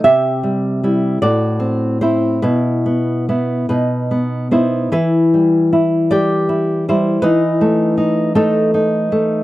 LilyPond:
\new Staff \with { instrumentName = "Nylon-string guitar" } { \time 6/8 \key b \phrygian \tempo 4. = 51 << { <g' e''>4. <fis' d''>4 <e' c''>8 | <e' b'>4. <dis' b'>4 <e' c''>8 | <e' b'>4. <g' d''>4 <e' c''>8 | <dis' b'>4. <dis' a'>8 r4 | } \\ { c8 g8 <g e'>8 a,8 c'8 c'8 | b,8 b8 <b e'>8 b,8 b8 <b dis'>8 | e8 g8 e'8 g8 e'8 g8 | e8 a8 dis'8 a8 dis'8 a8 | } >> }